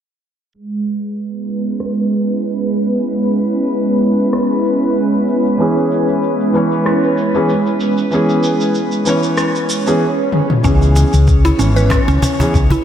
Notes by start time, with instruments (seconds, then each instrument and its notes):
0.54 analog synth pad G#3, synth texture B4, shaker
0.71 shaker
0.86 shaker
1.03 shaker
1.18 shaker
1.27 analog synth pad B3
1.34 analog synth pad E4 B4, shaker
1.42 analog synth pad C#4
1.49 shaker
1.66 shaker
1.80 cross-stick
2.12 shaker
2.29 shaker
2.43 shaker
2.61 shaker
2.75 shaker
2.92 shaker
3.07 shaker
3.24 shaker
3.38 shaker
3.56 shaker
3.70 shaker
3.87 shaker
4.02 shaker
4.19 shaker
4.33 cross-stick, shaker
4.51 shaker
4.65 shaker
4.82 shaker
4.96 shaker
5.14 shaker
5.28 shaker
5.45 shaker
5.58 felt piano E3 B3 C#4 G#4, shaker
5.77 shaker
5.91 shaker
6.09 shaker
6.23 shaker
6.40 shaker
6.53 felt piano E3 B3 C#4 C#5, shaker
6.72 shaker
6.86 cross-stick, shaker
7.03 shaker
7.18 shaker
7.34 felt piano E3 B3 C#4 G#4, shaker
7.49 shaker
7.66 shaker
7.80 shaker
7.98 shaker
8.10 felt piano E3 B3 C#4, shaker
8.15 felt piano G#4
8.29 shaker
8.43 shaker
8.61 shaker
8.75 shaker
8.92 shaker
9.05 felt piano E3 B3 C#4 C#5, shaker
9.23 shaker
9.38 cross-stick, swell, shaker
9.55 shaker
9.70 shaker
9.86 felt piano E3 B3 C#4 G#4, shaker
10.32 high tom
10.50 mid tom
10.63 fretless electric bass C#2, felt piano E3 B3 C#4, synth pluck C#4, synth texture C#5, kick, shaker
10.67 felt piano G#4
10.82 shaker
10.96 cajon slap, shaker
11.13 fretless electric bass C#2, shaker
11.28 kick, shaker
11.45 synth pluck E4, cajon slap, shaker
11.58 fretless electric bass G#1, felt piano E3 B3 C#4 C#5, synth pluck C#4, shaker
11.76 synth pluck B4, shaker
11.90 kick, cross-stick, cajon slap, shaker
12.08 fretless electric bass C#2, synth pluck C#4, shaker
12.22 synth pluck C#4, cajon bass, shaker
12.39 felt piano E3 B3 C#4 G#4, cajon bass, shaker
12.54 fretless electric bass C#2, kick, shaker
12.70 synth pluck E4, cajon bass, shaker